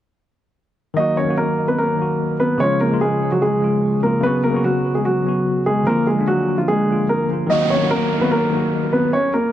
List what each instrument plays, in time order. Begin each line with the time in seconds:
0.94 tine electric piano D#3 F#3, grand piano D#4 D#5
0.98 tine electric piano A#3 F#4
1.17 grand piano C#4 C#5
1.24 tine electric piano D#3 F#3
1.28 tine electric piano A#3 F#4
1.38 grand piano A#3 A#4
1.68 grand piano B3 B4
1.78 grand piano A#3 A#4
1.96 tine electric piano D#3 F#3 A#3
2.02 tine electric piano F#4
2.40 grand piano B3 B4
2.58 tine electric piano C#3 F3 G#3, grand piano C#4 C#5
2.64 tine electric piano F4
2.81 grand piano A#3 A#4
2.88 tine electric piano C#3 F3 G#3
2.94 tine electric piano F4
3.01 grand piano G#3 G#4
3.32 grand piano F#3 F#4
3.42 grand piano G#3 G#4
3.58 tine electric piano C#3 F3
3.62 tine electric piano G#3 F4
4.00 tine electric piano C#3 F3 G#3, grand piano A#3 A#4
4.06 tine electric piano F4
4.21 tine electric piano C#3 F#3, grand piano B3 B4
4.25 tine electric piano B3 F#4
4.44 grand piano A#3 A#4
4.50 tine electric piano C#3 F#3
4.54 tine electric piano B3 F#4
4.64 grand piano F#3 F#4
4.95 grand piano G#3 G#4
5.05 grand piano F#3 F#4
5.23 tine electric piano C#3 F#3
5.27 tine electric piano B3 F#4
5.66 grand piano G#3 G#4
5.83 tine electric piano D3 F3, grand piano A#4
5.87 tine electric piano A#3 F4, grand piano A#3
6.07 grand piano G#3 G#4
6.14 tine electric piano D3 A#3
6.20 tine electric piano D4
6.27 grand piano F#3 F#4
6.58 grand piano F3 F4
6.68 grand piano G#3 G#4
6.86 tine electric piano D3 F3
6.90 tine electric piano A#3 F4
7.09 grand piano A#3 A#4
7.27 tine electric piano D3 F3
7.31 tine electric piano A#3 F4
7.47 tine electric piano D#3 F#3, grand piano D#4 D#5, downlifter
7.51 tine electric piano A#3 F#4
7.70 grand piano C#4 C#5
7.78 tine electric piano D#3 F#3 A#3
7.83 tine electric piano F#4
7.91 grand piano A#3 A#4
8.18 tine electric piano D#3 F#3 A#3, grand piano B4
8.22 grand piano B3, tine electric piano F#4
8.32 grand piano A#3 A#4
8.49 tine electric piano D#3 F#3 A#3
8.55 tine electric piano F#4
8.93 grand piano B3 B4
9.13 grand piano C#4 C#5
9.34 grand piano A#3 A#4